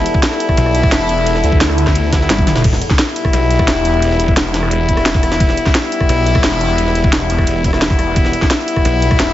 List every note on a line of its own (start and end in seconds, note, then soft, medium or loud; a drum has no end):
0.00 0.21 G3 medium
0.00 0.21 B3 medium
0.00 0.21 E4 loud
0.00 2.64 E4 medium
0.00 2.64 A4 medium
0.00 2.64 D5 medium
0.00 2.66 A5 medium
0.06 closed hi-hat medium
0.06 ride medium
0.14 kick medium
0.23 1.59 G3 loud
0.23 1.59 B3 loud
0.23 1.59 E4 loud
0.23 snare loud
0.23 closed hi-hat medium
0.23 ride medium
0.32 cross-stick soft
0.32 snare soft
0.40 closed hi-hat medium
0.40 ride medium
0.49 kick medium
0.49 cross-stick soft
0.57 0.91 B1 medium
0.57 closed hi-hat loud
0.57 ride medium
0.66 cross-stick soft
0.75 closed hi-hat medium
0.75 ride medium
0.83 kick loud
0.83 cross-stick soft
0.92 1.42 E1 loud
0.92 snare loud
0.92 closed hi-hat loud
0.92 ride medium
1.00 snare soft
1.09 closed hi-hat medium
1.09 ride medium
1.18 ride soft
1.26 closed hi-hat loud
1.26 ride medium
1.35 snare soft
1.44 2.29 D2 loud
1.44 closed hi-hat medium
1.44 ride medium
1.52 kick loud
1.61 2.11 G3 medium
1.61 2.11 B3 medium
1.61 2.11 E4 medium
1.61 snare loud
1.61 closed hi-hat loud
1.61 ride loud
1.69 cross-stick soft
1.78 closed hi-hat medium
1.78 ride medium
1.87 kick medium
1.87 cross-stick soft
1.87 snare soft
1.95 closed hi-hat loud
1.95 ride medium
2.13 2.19 G3 medium
2.13 2.19 B3 medium
2.13 2.19 E4 medium
2.13 kick medium
2.13 snare loud
2.13 closed hi-hat medium
2.13 ride medium
2.21 2.63 G3 medium
2.21 2.63 B3 medium
2.21 2.63 E4 loud
2.21 snare soft
2.30 2.46 G1 medium
2.30 snare loud
2.30 closed hi-hat loud
2.30 high tom medium
2.30 ride medium
2.38 kick loud
2.38 high tom medium
2.47 2.63 E1 loud
2.47 snare loud
2.47 closed hi-hat medium
2.47 mid tom medium
2.47 ride medium
2.56 snare loud
2.56 mid tom medium
2.56 ride medium
2.64 2.80 E1 loud
2.64 kick loud
2.64 closed hi-hat loud
2.64 crash loud
2.64 ride medium
2.73 snare medium
2.81 closed hi-hat medium
2.81 ride medium
2.90 kick loud
2.90 snare soft
2.99 4.35 G3 loud
2.99 4.35 B3 loud
2.99 4.35 E4 loud
2.99 snare loud
2.99 closed hi-hat loud
2.99 ride medium
3.07 snare soft
3.16 closed hi-hat medium
3.16 ride medium
3.25 kick medium
3.25 cross-stick medium
3.33 3.66 B1 medium
3.33 closed hi-hat loud
3.33 ride medium
3.51 closed hi-hat medium
3.51 ride medium
3.59 kick loud
3.59 cross-stick medium
3.68 4.18 E1 medium
3.68 snare loud
3.68 closed hi-hat loud
3.68 ride medium
3.76 snare soft
3.85 closed hi-hat medium
3.85 ride medium
3.94 ride soft
4.02 closed hi-hat loud
4.02 ride medium
4.11 snare soft
4.20 5.04 E1 loud
4.20 closed hi-hat medium
4.20 ride medium
4.28 kick loud
4.37 5.73 G3 medium
4.37 5.73 B3 medium
4.37 5.73 E4 loud
4.37 snare loud
4.37 closed hi-hat medium
4.37 ride medium
4.54 snare loud
4.54 closed hi-hat medium
4.54 ride medium
4.63 cross-stick medium
4.71 closed hi-hat loud
4.89 kick medium
4.89 closed hi-hat medium
4.97 cross-stick medium
4.97 ride medium
5.06 5.39 E1 medium
5.06 snare loud
5.06 closed hi-hat loud
5.14 kick loud
5.14 cross-stick soft
5.14 snare medium
5.23 cross-stick soft
5.23 closed hi-hat medium
5.23 ride medium
5.32 snare loud
5.32 ride medium
5.40 5.56 E1 loud
5.40 kick loud
5.40 closed hi-hat medium
5.40 ride medium
5.49 snare medium
5.57 closed hi-hat medium
5.57 ride medium
5.66 kick loud
5.66 snare soft
5.75 7.11 G3 loud
5.75 7.11 B3 loud
5.75 7.11 E4 loud
5.75 snare loud
5.75 closed hi-hat medium
5.75 ride medium
5.83 snare soft
5.92 closed hi-hat medium
5.92 ride medium
6.01 kick medium
6.01 cross-stick soft
6.09 6.42 B1 medium
6.09 closed hi-hat loud
6.09 ride medium
6.26 closed hi-hat medium
6.26 ride medium
6.35 kick loud
6.35 cross-stick medium
6.44 6.94 E1 loud
6.44 snare loud
6.44 closed hi-hat medium
6.44 ride medium
6.52 snare soft
6.61 closed hi-hat medium
6.61 ride medium
6.70 ride soft
6.78 closed hi-hat medium
6.78 ride medium
6.87 snare soft
6.95 7.28 E1 loud
6.95 closed hi-hat medium
6.95 ride medium
7.04 kick loud
7.13 7.63 G3 medium
7.13 7.63 B3 medium
7.13 7.63 E4 medium
7.13 snare loud
7.13 closed hi-hat medium
7.13 ride medium
7.30 8.15 E1 loud
7.30 closed hi-hat medium
7.30 ride medium
7.38 kick medium
7.38 cross-stick soft
7.47 closed hi-hat loud
7.47 ride medium
7.64 7.71 G3 medium
7.64 7.71 B3 medium
7.64 7.71 E4 medium
7.64 kick medium
7.64 closed hi-hat medium
7.64 ride medium
7.73 8.48 G3 medium
7.73 8.48 B3 medium
7.73 8.48 E4 loud
7.73 cross-stick medium
7.73 snare medium
7.82 snare loud
7.82 closed hi-hat medium
7.90 kick loud
7.90 cross-stick soft
7.90 snare medium
7.99 cross-stick soft
7.99 closed hi-hat medium
7.99 ride medium
8.16 8.32 E1 medium
8.16 kick loud
8.16 closed hi-hat medium
8.16 ride medium
8.25 snare medium
8.33 closed hi-hat medium
8.33 ride medium
8.42 kick loud
8.42 snare soft
8.51 9.33 G3 loud
8.51 9.33 B3 loud
8.51 9.33 E4 loud
8.51 snare loud
8.51 closed hi-hat medium
8.51 ride loud
8.59 snare soft
8.68 closed hi-hat medium
8.68 ride medium
8.76 kick medium
8.76 cross-stick soft
8.85 9.18 B1 loud
8.85 closed hi-hat loud
8.85 ride medium
9.02 closed hi-hat medium
9.02 ride medium
9.11 kick loud
9.11 cross-stick medium
9.19 9.33 E1 loud
9.19 snare loud
9.19 closed hi-hat medium
9.19 ride medium
9.28 snare soft